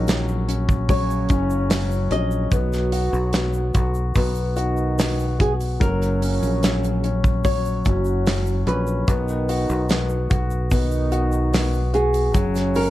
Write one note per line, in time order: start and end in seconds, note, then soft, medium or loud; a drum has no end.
0.00 1.26 A#1 medium
0.00 0.46 D#3 medium
0.00 0.08 F#3 medium
0.00 0.47 C#4 medium
0.00 0.46 D#4 medium
0.00 0.86 A#4 loud
0.08 0.88 F#3 medium
0.08 snare loud
0.08 hi-hat pedal medium
0.08 open hi-hat medium
0.08 shaker medium
0.28 shaker soft
0.48 1.28 C#4 medium
0.48 hi-hat pedal medium
0.48 open hi-hat medium
0.48 shaker soft
0.69 kick medium
0.69 shaker soft
0.89 2.08 C#3 medium
0.89 1.68 F#3 medium
0.89 2.08 C#4 loud
0.89 2.12 C#5 loud
0.89 kick loud
0.89 hi-hat pedal medium
0.89 open hi-hat medium
0.89 shaker medium
1.10 shaker soft
1.29 2.07 F#1 loud
1.29 2.09 C#4 medium
1.29 kick medium
1.29 hi-hat pedal medium
1.29 open hi-hat medium
1.29 shaker soft
1.50 shaker soft
1.70 2.49 F#3 medium
1.70 snare loud
1.70 hi-hat pedal medium
1.70 open hi-hat medium
1.70 shaker medium
1.91 shaker soft
2.11 2.49 A#1 medium
2.11 2.50 C#4 medium
2.11 5.36 D#5 loud
2.11 hi-hat pedal medium
2.11 open hi-hat medium
2.31 shaker soft
2.51 3.09 B1 medium
2.51 4.12 F#3 medium
2.51 3.32 B3 medium
2.51 4.12 F#4 medium
2.51 kick loud
2.51 hi-hat pedal medium
2.51 open hi-hat medium
2.51 shaker medium
2.73 snare soft
2.73 shaker soft
2.92 3.73 F#4 medium
2.92 hi-hat pedal medium
2.92 open hi-hat medium
2.92 shaker soft
3.13 3.70 B1 medium
3.13 shaker soft
3.33 4.14 B3 medium
3.33 snare loud
3.33 hi-hat pedal medium
3.33 open hi-hat medium
3.33 shaker medium
3.53 shaker soft
3.74 4.13 B1 medium
3.74 4.55 F#4 medium
3.74 kick medium
3.74 hi-hat pedal medium
3.74 open hi-hat medium
3.74 shaker soft
3.95 shaker soft
4.15 5.77 B1 loud
4.15 4.96 B3 medium
4.15 kick medium
4.15 hi-hat pedal medium
4.15 open hi-hat medium
4.15 shaker medium
4.35 shaker soft
4.56 5.38 D#3 medium
4.56 5.38 D#4 medium
4.56 5.38 F#4 medium
4.56 hi-hat pedal medium
4.56 open hi-hat medium
4.56 shaker soft
4.77 shaker soft
4.98 5.78 B3 soft
4.98 snare loud
4.98 hi-hat pedal medium
4.98 open hi-hat medium
4.98 shaker medium
5.19 shaker soft
5.39 5.79 F#4 medium
5.39 5.52 G#4 medium
5.39 kick medium
5.39 hi-hat pedal medium
5.39 open hi-hat medium
5.61 open hi-hat medium
5.61 shaker soft
5.80 6.39 F#1 medium
5.80 7.41 C#3 medium
5.80 6.62 F#3 medium
5.80 7.41 C#4 loud
5.80 7.44 A#4 medium
5.80 kick loud
5.80 hi-hat pedal medium
5.80 open hi-hat medium
5.80 shaker medium
6.02 hi-hat pedal medium
6.02 shaker medium
6.22 7.03 C#4 medium
6.22 hi-hat pedal medium
6.22 open hi-hat medium
6.22 shaker soft
6.43 7.81 A#1 medium
6.43 open hi-hat soft
6.43 shaker soft
6.63 7.43 F#3 medium
6.63 snare loud
6.63 hi-hat pedal medium
6.63 open hi-hat medium
6.63 shaker medium
6.84 hi-hat pedal medium
6.84 shaker soft
7.04 7.84 C#4 medium
7.04 hi-hat pedal medium
7.04 open hi-hat medium
7.04 shaker soft
7.24 kick medium
7.24 shaker soft
7.45 8.25 F#3 medium
7.45 8.63 C#5 loud
7.45 kick medium
7.45 hi-hat pedal medium
7.45 open hi-hat medium
7.45 shaker medium
7.65 shaker soft
7.85 8.63 F#1 medium
7.85 8.65 F#3 medium
7.85 8.65 C#4 medium
7.85 8.65 F#4 medium
7.85 kick medium
7.85 hi-hat pedal medium
7.85 open hi-hat medium
7.85 shaker soft
8.05 shaker soft
8.26 9.06 F#3 medium
8.26 snare loud
8.26 hi-hat pedal medium
8.26 open hi-hat medium
8.26 shaker medium
8.46 shaker soft
8.67 9.05 A#1 loud
8.67 9.07 C#4 medium
8.67 12.04 B4 medium
8.67 hi-hat pedal medium
8.67 open hi-hat medium
8.87 shaker soft
9.08 9.65 B1 loud
9.08 10.28 D#3 medium
9.08 9.88 B3 medium
9.08 10.28 D#4 medium
9.08 kick loud
9.08 hi-hat pedal medium
9.08 open hi-hat medium
9.08 shaker medium
9.28 shaker soft
9.49 10.29 F#4 medium
9.49 hi-hat pedal medium
9.49 open hi-hat medium
9.49 shaker soft
9.69 10.27 B1 loud
9.69 shaker medium
9.89 10.70 B3 medium
9.89 snare loud
9.89 hi-hat pedal medium
9.89 open hi-hat loud
9.89 shaker medium
10.09 shaker soft
10.30 10.69 B1 medium
10.30 11.11 F#4 medium
10.30 kick loud
10.30 hi-hat pedal medium
10.30 open hi-hat medium
10.30 shaker soft
10.50 shaker soft
10.71 12.35 B1 loud
10.71 11.91 D#3 medium
10.71 11.51 B3 medium
10.71 11.91 D#4 medium
10.71 kick medium
10.71 hi-hat pedal medium
10.71 open hi-hat medium
10.71 shaker medium
10.91 shaker medium
11.12 11.92 F#4 medium
11.12 hi-hat pedal medium
11.12 open hi-hat medium
11.12 shaker soft
11.32 shaker soft
11.52 12.32 B3 medium
11.52 snare loud
11.52 hi-hat pedal medium
11.52 open hi-hat medium
11.52 shaker medium
11.74 shaker soft
11.94 12.33 F#4 medium
11.94 12.78 G#4 medium
11.94 hi-hat pedal medium
11.94 open hi-hat medium
12.14 open hi-hat medium
12.14 shaker soft
12.34 12.90 F#1 loud
12.34 12.90 C#3 medium
12.34 12.90 F#3 medium
12.34 12.90 C#4 medium
12.34 kick medium
12.34 hi-hat pedal medium
12.34 open hi-hat medium
12.34 shaker medium
12.55 snare soft
12.55 hi-hat pedal medium
12.55 shaker medium
12.75 12.90 C#4 medium
12.75 12.90 A#4 medium
12.75 hi-hat pedal medium
12.75 open hi-hat medium
12.75 shaker soft